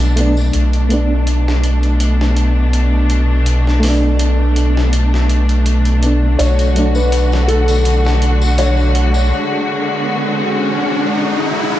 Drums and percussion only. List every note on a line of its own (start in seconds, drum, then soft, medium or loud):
0.00 closed hi-hat soft
0.00 tambourine soft
0.17 closed hi-hat medium
0.17 triangle medium
0.37 tambourine medium
0.53 closed hi-hat medium
0.73 closed hi-hat soft
0.90 closed hi-hat medium
1.27 closed hi-hat medium
1.48 snare soft
1.64 closed hi-hat medium
1.83 closed hi-hat soft
2.00 closed hi-hat medium
2.21 snare soft
2.37 closed hi-hat soft
2.73 closed hi-hat medium
3.10 closed hi-hat medium
3.46 closed hi-hat medium
3.67 snare soft
3.83 snare soft
3.83 open hi-hat medium
4.19 closed hi-hat medium
4.56 closed hi-hat medium
4.77 snare soft
4.93 closed hi-hat medium
5.14 snare soft
5.29 closed hi-hat medium
5.49 closed hi-hat soft
5.66 closed hi-hat medium
5.85 closed hi-hat soft
6.03 closed hi-hat medium
6.39 closed hi-hat medium
6.39 tambourine medium
6.59 closed hi-hat soft
6.59 tambourine soft
6.76 closed hi-hat medium
6.95 tambourine medium
7.12 closed hi-hat medium
7.12 tambourine medium
7.32 snare soft
7.32 tambourine soft
7.49 closed hi-hat medium
7.68 closed hi-hat soft
7.68 tambourine medium
7.85 closed hi-hat medium
7.85 tambourine medium
8.05 snare soft
8.05 tambourine soft
8.22 closed hi-hat medium
8.42 tambourine medium
8.58 closed hi-hat medium
8.58 tambourine medium
8.77 tambourine soft
8.95 closed hi-hat medium
9.14 tambourine medium